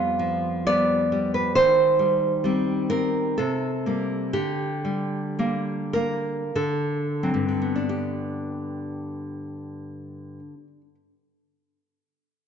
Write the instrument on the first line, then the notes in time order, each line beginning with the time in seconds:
nylon-string guitar
Already playing: F2 G3 B3 F4
0.19 F3
0.67 G3 B3 D5
1.12 G3
1.34 B4
1.55 D#3 C5
1.99 G3
2.44 G3 C4
2.90 C4 A#4
3.38 C3 A4
3.86 G3 A#3
4.33 D3 G4
4.85 G3
5.39 G3 A#3
5.93 A#3 A#4
6.56 D3 A4
7.23 F#3 C4
7.34 G2
7.49 D3
7.62 B3
7.76 D4
7.89 G4